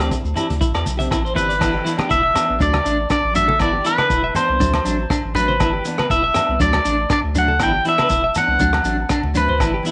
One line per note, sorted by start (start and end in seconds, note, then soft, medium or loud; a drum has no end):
0.00 0.13 D2 medium
0.00 0.15 C4 soft
0.00 0.14 D4 soft
0.00 0.13 G4 medium
0.00 cross-stick medium
0.00 closed hi-hat soft
0.00 high conga medium
0.00 low agogo medium
0.11 kick medium
0.11 closed hi-hat soft
0.11 shekere medium
0.24 0.34 D2 medium
0.24 shekere soft
0.34 0.51 E3 medium
0.34 0.52 C4 medium
0.34 0.52 D4 medium
0.34 0.47 E4 medium
0.34 0.53 G4 medium
0.34 closed hi-hat soft
0.34 low conga medium
0.34 low agogo medium
0.34 shekere medium
0.50 0.63 D2 medium
0.50 closed hi-hat soft
0.50 high conga medium
0.50 shekere soft
0.61 0.72 A1 medium
0.61 0.72 E4 medium
0.61 kick medium
0.61 closed hi-hat soft
0.61 shekere medium
0.74 0.84 E2 medium
0.74 0.84 D5 medium
0.74 cross-stick medium
0.74 low agogo medium
0.74 shekere soft
0.86 1.09 B1 medium
0.86 closed hi-hat soft
0.86 high conga medium
0.86 shekere medium
0.97 1.14 C4 soft
0.97 1.14 D4 soft
0.97 1.13 G4 medium
0.97 1.09 E5 medium
0.97 closed hi-hat soft
0.97 high conga medium
0.97 shekere soft
1.11 1.34 A1 medium
1.11 1.22 E4 medium
1.11 kick medium
1.11 cross-stick medium
1.11 closed hi-hat soft
1.11 low agogo medium
1.11 shekere medium
1.25 1.34 C5 medium
1.25 shekere soft
1.34 1.59 G1 medium
1.34 1.51 E3 medium
1.34 1.51 C4 medium
1.34 1.52 D4 medium
1.34 1.47 E4 medium
1.34 1.52 G4 medium
1.34 2.10 B4 medium
1.34 closed hi-hat soft
1.34 low conga medium
1.38 shekere medium
1.49 1.59 D5 medium
1.49 closed hi-hat soft
1.49 shekere soft
1.59 1.81 G1 loud
1.59 1.75 E3 medium
1.59 1.76 B3 medium
1.59 1.76 D4 medium
1.59 1.71 E4 medium
1.59 kick medium
1.59 cross-stick medium
1.59 crash medium
1.59 low agogo medium
1.59 shekere medium
1.73 1.83 G4 medium
1.84 1.98 E3 medium
1.84 1.99 B3 medium
1.84 1.96 D4 medium
1.84 1.96 E4 medium
1.84 closed hi-hat medium
1.84 shekere medium
1.97 2.14 B3 soft
1.97 2.12 D4 medium
1.97 2.08 G4 medium
1.97 cross-stick medium
1.97 high conga medium
1.97 low agogo medium
2.09 2.31 E1 medium
2.09 2.21 E4 medium
2.09 2.62 E5 medium
2.09 kick medium
2.09 shekere medium
2.23 2.33 E5 medium
2.33 2.48 E3 medium
2.33 2.47 B3 medium
2.33 2.44 D4 medium
2.33 cross-stick medium
2.33 closed hi-hat soft
2.33 low conga medium
2.33 low agogo medium
2.33 shekere medium
2.45 2.59 B3 soft
2.45 2.59 D4 medium
2.50 2.59 A1 medium
2.59 2.81 D2 medium
2.59 2.75 F#3 medium
2.59 2.76 A3 medium
2.59 2.72 D4 medium
2.59 2.77 D4 medium
2.59 3.08 D5 loud
2.59 kick medium
2.59 shekere medium
2.73 cross-stick medium
2.73 high conga medium
2.73 low agogo medium
2.85 3.06 A1 loud
2.85 3.01 A3 medium
2.85 2.97 D4 medium
2.85 3.02 D4 medium
2.85 closed hi-hat soft
2.85 shekere medium
3.10 3.21 D4 medium
3.10 3.34 D5 loud
3.10 kick medium
3.10 cross-stick medium
3.10 low agogo medium
3.10 shekere loud
3.24 3.61 A1 medium
3.33 3.50 F#3 medium
3.33 3.51 A3 medium
3.33 3.46 D4 medium
3.33 3.51 D4 medium
3.33 3.59 E5 medium
3.33 closed hi-hat soft
3.33 low conga medium
3.33 shekere medium
3.48 3.58 A4 medium
3.48 high conga medium
3.59 3.81 G1 loud
3.59 3.76 E3 medium
3.59 3.77 B3 medium
3.59 3.77 D4 medium
3.59 3.71 E4 medium
3.59 3.84 D5 loud
3.59 kick medium
3.59 cross-stick medium
3.59 low agogo medium
3.59 shekere medium
3.73 3.83 G4 medium
3.84 3.99 E3 medium
3.84 3.99 B3 medium
3.84 3.97 D4 medium
3.84 3.96 E4 medium
3.84 4.36 B4 loud
3.84 closed hi-hat soft
3.84 shekere medium
3.98 4.13 D4 medium
3.98 4.08 B4 medium
3.98 cross-stick medium
3.98 high conga medium
3.98 low agogo medium
4.10 4.30 E1 medium
4.10 4.21 E4 medium
4.10 kick medium
4.10 shekere medium
4.24 4.33 E5 medium
4.35 4.48 E3 medium
4.35 4.49 B3 medium
4.35 4.47 D4 medium
4.35 5.35 C5 medium
4.35 closed hi-hat soft
4.35 low conga medium
4.35 low agogo medium
4.35 shekere medium
4.48 4.58 C2 medium
4.48 4.61 B3 soft
4.48 4.60 D4 medium
4.60 4.81 D2 medium
4.60 4.76 F#3 medium
4.60 4.76 A3 medium
4.60 4.77 C4 medium
4.60 4.71 D4 medium
4.60 kick medium
4.60 shekere loud
4.74 cross-stick medium
4.74 high conga medium
4.74 low agogo medium
4.84 5.06 A1 loud
4.84 5.00 F#3 medium
4.84 5.01 A3 medium
4.84 5.02 C4 medium
4.84 4.96 D4 medium
4.84 closed hi-hat soft
4.84 shekere medium
5.10 5.21 D4 medium
5.10 kick medium
5.10 cross-stick medium
5.10 low agogo medium
5.10 shekere medium
5.25 5.62 A1 medium
5.35 5.51 F#3 medium
5.35 5.51 A3 medium
5.35 5.52 C4 medium
5.35 5.46 D4 medium
5.35 6.06 B4 medium
5.35 closed hi-hat soft
5.35 low conga medium
5.35 shekere medium
5.48 5.58 C5 medium
5.48 high conga medium
5.60 5.81 G1 loud
5.60 5.76 E3 medium
5.60 5.76 B3 medium
5.60 5.76 D4 medium
5.60 5.71 E4 medium
5.60 kick medium
5.60 cross-stick medium
5.60 low agogo medium
5.60 shekere medium
5.73 5.83 G4 medium
5.85 5.98 E3 medium
5.85 5.99 B3 medium
5.85 5.97 D4 medium
5.85 muted clean electric guitar stroke medium
5.85 closed hi-hat medium
5.85 shekere medium
5.98 6.14 B3 soft
5.98 6.13 D4 medium
5.98 6.08 B4 medium
5.98 cross-stick medium
5.98 high conga medium
5.98 low agogo medium
6.10 6.30 E1 medium
6.10 6.21 E4 medium
6.10 6.61 E5 medium
6.10 kick medium
6.10 shekere medium
6.24 6.33 E5 medium
6.34 6.49 B3 medium
6.34 6.50 D4 medium
6.34 muted nylon-string guitar stroke medium
6.34 cross-stick medium
6.34 closed hi-hat soft
6.34 low conga medium
6.34 low agogo medium
6.34 shekere medium
6.49 6.58 C2 medium
6.49 6.61 B3 medium
6.60 6.80 D2 medium
6.60 6.76 F#3 medium
6.60 6.77 A3 medium
6.60 6.71 D4 medium
6.60 6.77 D4 medium
6.60 7.12 D5 loud
6.60 kick loud
6.60 shekere medium
6.73 cross-stick medium
6.73 high conga medium
6.73 low agogo medium
6.85 7.06 A1 loud
6.85 7.01 A3 medium
6.85 6.96 D4 medium
6.85 7.02 D4 medium
6.85 closed hi-hat medium
6.85 shekere medium
7.10 7.21 D4 medium
7.10 7.19 D5 loud
7.10 kick medium
7.10 cross-stick medium
7.10 low agogo medium
7.10 shekere loud
7.24 7.61 D2 medium
7.35 7.50 F#3 medium
7.35 7.51 A3 medium
7.35 7.46 D4 medium
7.35 7.52 D4 medium
7.35 7.60 F#5 medium
7.35 closed hi-hat medium
7.35 low conga medium
7.35 shekere medium
7.48 7.58 A4 medium
7.48 high conga medium
7.59 7.80 G1 loud
7.59 7.75 E3 medium
7.59 7.75 B3 medium
7.59 7.76 D4 medium
7.59 7.71 E4 medium
7.59 kick medium
7.59 cross-stick medium
7.59 low conga medium
7.59 low agogo medium
7.59 shekere loud
7.63 7.85 G5 loud
7.73 7.83 G4 medium
7.85 7.98 E3 medium
7.85 7.99 B3 medium
7.85 7.96 D4 medium
7.85 7.96 E4 medium
7.85 closed hi-hat soft
7.89 8.37 E5 loud
7.98 8.14 B3 soft
7.98 8.12 D4 medium
7.98 8.08 B4 medium
7.98 cross-stick medium
7.98 high conga medium
7.98 low agogo medium
8.10 8.30 E1 medium
8.10 8.21 E4 medium
8.10 kick medium
8.10 shekere loud
8.24 8.33 E5 medium
8.35 8.48 E3 medium
8.35 8.49 B3 medium
8.35 8.46 D4 medium
8.35 9.39 F#5 loud
8.35 closed hi-hat soft
8.35 high conga medium
8.35 low conga medium
8.35 low agogo medium
8.35 shekere medium
8.48 8.57 C2 medium
8.48 8.60 B3 soft
8.48 8.59 D4 medium
8.59 8.80 D2 loud
8.59 8.75 F#3 medium
8.59 8.75 A3 medium
8.59 8.76 C4 medium
8.59 8.71 D4 medium
8.59 kick medium
8.59 shekere loud
8.73 cross-stick medium
8.73 high conga medium
8.73 low agogo medium
8.82 9.05 A1 loud
8.82 8.99 F#3 soft
8.82 9.00 A3 medium
8.82 9.01 C4 medium
8.82 8.96 D4 medium
8.82 closed hi-hat soft
8.82 shekere medium
9.09 9.21 D4 medium
9.09 kick medium
9.09 cross-stick medium
9.09 low agogo medium
9.09 shekere medium
9.23 9.61 D2 medium
9.23 high conga soft
9.34 9.50 F#3 medium
9.34 9.51 A3 medium
9.34 9.51 C4 medium
9.34 9.46 D4 medium
9.34 9.91 B4 medium
9.34 closed hi-hat soft
9.34 low conga medium
9.34 shekere medium
9.49 9.58 C5 medium
9.49 low conga medium
9.58 9.80 G1 loud
9.58 9.74 E3 medium
9.58 9.75 B3 medium
9.58 9.75 D4 medium
9.58 9.71 E4 medium
9.58 kick medium
9.58 cross-stick medium
9.58 low agogo medium
9.58 shekere medium
9.74 9.83 G4 medium
9.83 9.91 E3 medium
9.83 9.91 B3 medium
9.83 9.91 D4 medium
9.83 9.91 E4 medium
9.83 closed hi-hat soft
9.83 shekere medium